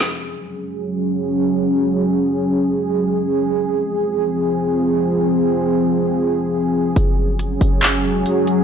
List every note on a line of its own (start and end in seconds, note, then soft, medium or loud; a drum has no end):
0.01 snare loud
0.06 3.48 F#3 medium
0.06 3.48 C#4 medium
0.06 6.92 G#4 medium
3.51 6.93 F3 medium
3.51 6.93 C4 medium
6.96 7.58 F#1 loud
6.96 8.64 F#3 medium
6.96 8.64 C#4 medium
6.96 8.64 G#4 medium
6.96 closed hi-hat medium
7.39 closed hi-hat medium
7.61 8.06 F#1 loud
7.61 closed hi-hat medium
7.83 clap loud
7.83 closed hi-hat medium
8.04 8.25 F1 loud
8.26 closed hi-hat medium
8.47 closed hi-hat medium